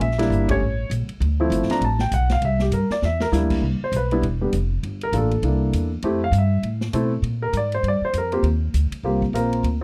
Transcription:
0.00 upright bass A#1, grand piano E5, ride
0.11 snare
0.18 grand piano G3 A#3 D4 E4, snare, ride
0.30 upright bass G1, hi-hat pedal
0.48 grand piano G3 A3 C#4 G4 C#5, kick, ride
0.60 upright bass A1
0.90 upright bass A#1, hi-hat pedal, ride
1.08 muted upright bass stroke, ride
1.20 upright bass D2, ride
1.40 grand piano F3 A3 C4 E4
1.50 upright bass G1, hi-hat pedal, ride
1.62 snare
1.68 grand piano F3 A3 C4 D4 A#5, muted upright bass stroke, snare, ride
1.81 upright bass A1, grand piano A5, ride
1.99 grand piano G5, snare
2.11 upright bass B1, grand piano F#5, hi-hat pedal, ride
2.29 grand piano F5, snare, ride
2.42 upright bass C2, grand piano E5, ride
2.59 grand piano G4, snare
2.71 upright bass G2, grand piano A#4, hi-hat pedal, ride
2.90 grand piano D5, muted upright bass stroke, snare
3.02 upright bass E2, grand piano E5, snare
3.20 grand piano A#4, snare
3.32 upright bass D2, grand piano G3 A#3 D4 E4, snare, hi-hat pedal
3.50 kick, crash
3.61 upright bass C2
3.81 grand piano C5, muted upright bass stroke
3.92 upright bass B1, hi-hat pedal, ride
3.96 grand piano B4
4.11 grand piano G3 B3 D4 E4, ride
4.22 upright bass E1, ride
4.41 grand piano G3 B3 D4 G4
4.53 upright bass F1, hi-hat pedal, ride
4.83 upright bass G1, ride
5.01 grand piano A#4, ride
5.12 upright bass A1, grand piano A#3 D4 F4 A4, hi-hat pedal, ride
5.17 grand piano A4
5.31 ride
5.42 upright bass C2, grand piano A#3 D4 E4 A4, ride
5.73 upright bass E2, hi-hat pedal, ride
6.02 upright bass F2, grand piano A3 C4 E4 G4, ride
6.24 grand piano F5
6.32 upright bass G2, hi-hat pedal, ride
6.38 grand piano E5
6.63 upright bass A2, ride
6.81 snare
6.93 upright bass B2, grand piano A3 C4 E4 A4, hi-hat pedal, ride
7.22 upright bass A#2, ride
7.42 grand piano A#4
7.53 upright bass G#2, hi-hat pedal, ride
7.57 grand piano D5
7.72 grand piano C5, ride
7.83 upright bass G2, ride
7.88 grand piano D5
8.01 grand piano C5, muted upright bass stroke
8.13 upright bass F2, hi-hat pedal, ride
8.18 grand piano A#4
8.32 grand piano A#3 C4 F4 G4, ride
8.43 upright bass D#2, ride
8.74 upright bass D2, hi-hat pedal, ride
8.91 muted upright bass stroke, ride
9.03 upright bass C2, grand piano A#3 C4 F4 G4
9.22 kick
9.33 upright bass A#1, grand piano A#3 C4 F4 A#4, hi-hat pedal, ride
9.53 ride
9.63 upright bass D2, ride

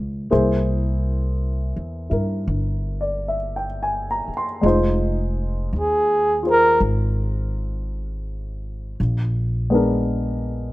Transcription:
Already playing: upright bass C#2, grand piano A#3 C#4 G#4 C5
0.31 upright bass C2, grand piano A#3 E4 G#4 C5
1.76 upright bass E2
2.10 upright bass G2, grand piano E4 A#4
2.48 upright bass G1
3.01 grand piano D5
3.28 grand piano E5
3.56 grand piano G5
3.83 grand piano G#5
4.11 grand piano A#5
4.28 muted upright bass stroke
4.37 grand piano C6
4.61 upright bass F1, grand piano G#3 D#4 F4
4.66 grand piano C5
5.73 upright bass D#2
5.79 flugelhorn G#4
6.43 grand piano F4 G#4 C5
6.50 flugelhorn A#4
6.80 upright bass G#1
9.00 upright bass A#1
9.70 grand piano G#3 B3 D4
9.75 grand piano A#4

